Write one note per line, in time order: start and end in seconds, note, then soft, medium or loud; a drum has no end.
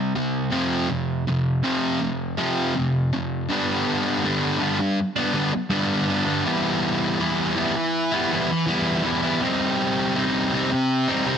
0.00 0.13 C3 medium
0.00 0.13 G3 medium
0.15 0.50 C3 medium
0.15 0.49 G3 medium
0.51 0.87 F2 medium
0.51 0.87 C3 loud
0.51 0.88 F3 loud
0.88 1.23 F2 medium
0.88 1.23 C3 medium
1.27 1.61 F2 medium
1.27 1.61 C3 medium
1.63 1.99 F2 medium
1.63 2.00 C3 medium
1.63 2.00 F3 loud
2.02 2.35 F2 medium
2.02 2.35 C3 medium
2.38 2.73 F2 medium
2.38 2.73 C3 medium
2.38 2.74 F3 loud
2.75 3.09 F2 medium
2.75 3.09 C3 medium
3.13 3.47 F2 medium
3.13 3.47 C3 medium
3.49 4.22 G2 loud
3.49 4.24 D3 loud
3.49 4.25 G3 loud
3.49 4.25 B3 loud
3.49 4.25 D4 loud
4.24 4.98 G2 medium
4.24 4.58 D3 medium
4.24 4.61 G3 loud
4.24 4.61 B3 medium
4.24 4.62 D4 medium
4.59 4.79 D3 medium
4.59 4.80 G3 medium
4.59 4.79 B3 medium
4.59 4.78 D4 medium
4.79 muted distorted electric guitar stroke medium
5.16 5.34 G3 medium
5.16 5.34 B3 medium
5.16 5.35 D4 medium
5.33 5.52 D3 medium
5.33 5.53 G3 medium
5.33 5.52 B3 medium
5.33 5.52 D4 medium
5.53 muted distorted electric guitar stroke medium
5.70 6.43 G2 medium
5.70 6.07 D3 medium
5.70 6.08 G3 loud
5.70 6.09 B3 loud
5.70 6.10 D4 loud
6.08 6.44 D3 medium
6.08 6.28 G3 medium
6.08 6.26 B3 loud
6.08 6.24 D4 medium
6.26 6.46 G3 medium
6.26 6.44 B3 medium
6.26 6.43 D4 medium
6.46 7.18 E3 medium
6.46 7.20 G3 loud
6.46 7.20 B3 loud
6.46 7.21 E4 loud
7.19 7.54 E3 medium
7.19 7.56 G3 medium
7.19 7.56 B3 medium
7.19 7.57 E4 medium
7.56 8.13 E3 medium
7.56 7.77 G3 medium
7.56 7.75 B3 medium
7.56 7.75 E4 medium
7.76 muted distorted electric guitar stroke medium
8.12 8.33 G3 medium
8.12 8.33 B3 medium
8.12 8.34 E4 medium
8.32 8.65 E3 medium
8.32 8.51 G3 medium
8.32 8.51 B3 medium
8.32 8.50 E4 loud
8.51 muted distorted electric guitar stroke medium
8.66 9.02 E3 loud
8.66 9.04 G3 loud
8.66 9.05 B3 loud
8.66 9.06 E4 loud
9.04 9.40 E3 medium
9.04 9.26 G3 medium
9.04 9.24 B3 medium
9.04 9.22 E4 medium
9.23 9.43 G3 medium
9.23 9.41 B3 medium
9.23 9.41 E4 medium
9.41 10.15 C3 medium
9.41 10.17 G3 loud
9.41 10.16 C4 loud
9.41 10.19 D#4 loud
10.16 10.50 C3 loud
10.16 10.52 G3 loud
10.16 10.53 C4 loud
10.16 10.54 D#4 loud
10.52 11.09 C3 medium
10.52 10.72 G3 medium
10.52 10.71 C4 medium
10.52 10.71 D#4 medium
10.72 muted distorted electric guitar stroke medium
11.07 11.27 G3 medium
11.07 11.27 C4 medium
11.07 11.27 D#4 medium
11.26 11.38 C3 medium
11.26 11.38 G3 medium
11.26 11.38 C4 medium
11.26 11.38 D#4 medium